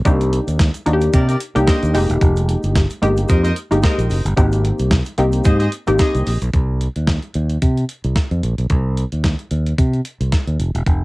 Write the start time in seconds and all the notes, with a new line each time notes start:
0.05 C2 A#3 D4 D#4 G4, kick, closed hi-hat, shaker
0.21 closed hi-hat, shaker
0.33 closed hi-hat
0.47 D#2, closed hi-hat, shaker
0.59 kick, snare, closed hi-hat, shaker
0.74 closed hi-hat, shaker
0.86 D#2 A#3 D4 D#4 F#4, closed hi-hat
0.93 G4
1.01 closed hi-hat, shaker
1.13 C3 G4 A#4 D5, kick, closed hi-hat, shaker
1.28 G4 A#4 D5, closed hi-hat, shaker
1.40 closed hi-hat, shaker
1.55 C2 A#3 D4 D#4 G4, closed hi-hat, shaker
1.67 A#4 C5 D#5, kick, snare, closed hi-hat, shaker
1.83 D#2, closed hi-hat, shaker
1.94 F1 G#3 A#3 D#4 G4, open hi-hat, shaker
2.10 E1, closed hi-hat, shaker
2.21 F1, kick, closed hi-hat, shaker
2.36 closed hi-hat, shaker
2.49 closed hi-hat
2.63 G1, closed hi-hat, shaker
2.75 kick, snare, closed hi-hat, shaker
2.90 closed hi-hat, shaker
3.02 G1 G#3 A#3 D#4 G4, closed hi-hat
3.17 closed hi-hat, shaker
3.28 F2 A#4 C5 D#5, kick, closed hi-hat, shaker
3.44 A#4 C5 D#5, closed hi-hat, shaker
3.56 closed hi-hat, shaker
3.71 G1 G#3 A#3 D#4 G4, closed hi-hat, shaker
3.82 A#4 C5 D#5, kick, snare, closed hi-hat, shaker
3.98 A#1, closed hi-hat, shaker
4.10 F#1, open hi-hat, shaker
4.25 G1, closed hi-hat, shaker
4.37 G#1 A#3 C4 D#4 G4, kick, closed hi-hat, shaker
4.52 closed hi-hat, shaker
4.65 closed hi-hat
4.79 C2, closed hi-hat, shaker
4.91 kick, snare, closed hi-hat, shaker
5.05 closed hi-hat, shaker
5.18 C2 A#3 C4 D#4 G4, closed hi-hat
5.32 closed hi-hat, shaker
5.44 G#2 G#4 C5 D#5, kick, closed hi-hat, shaker
5.60 G#4 C5 D#5, closed hi-hat, shaker
5.72 closed hi-hat, shaker
5.87 G#1 A#3 C4 D#4 G4, closed hi-hat, shaker
5.99 G#4 C5 D#5, kick, snare, closed hi-hat, shaker
6.15 C2, closed hi-hat, shaker
6.26 A#1, open hi-hat, shaker
6.42 B1, closed hi-hat, shaker
6.53 C2, kick, closed hi-hat
6.81 closed hi-hat
6.96 D#2, closed hi-hat
7.07 kick, snare, closed hi-hat
7.22 closed hi-hat
7.34 D#2, closed hi-hat
7.50 closed hi-hat
7.62 C3, kick, closed hi-hat
7.77 closed hi-hat
7.89 closed hi-hat
8.04 C2, closed hi-hat
8.16 kick, snare, closed hi-hat
8.31 F2, closed hi-hat
8.43 A#1, closed hi-hat
8.58 B1, closed hi-hat
8.70 C2, kick, closed hi-hat
8.97 closed hi-hat
9.12 D#2, closed hi-hat
9.24 kick, snare, closed hi-hat
9.39 closed hi-hat
9.51 D#2, closed hi-hat
9.66 closed hi-hat
9.78 C3, kick, closed hi-hat
9.94 closed hi-hat
10.05 closed hi-hat
10.21 C2, closed hi-hat
10.32 kick, snare, closed hi-hat
10.47 D#2, closed hi-hat
10.59 F1, closed hi-hat
10.75 E1, closed hi-hat
10.86 F1, kick, closed hi-hat